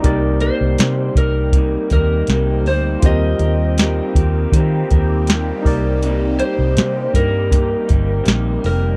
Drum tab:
HH |xxxxxxxo|xxxxxxxo|xxxxxxxo|
SD |--o---o-|--o---o-|--o---o-|
BD |o--ooo--|o--ooo-o|---ooo--|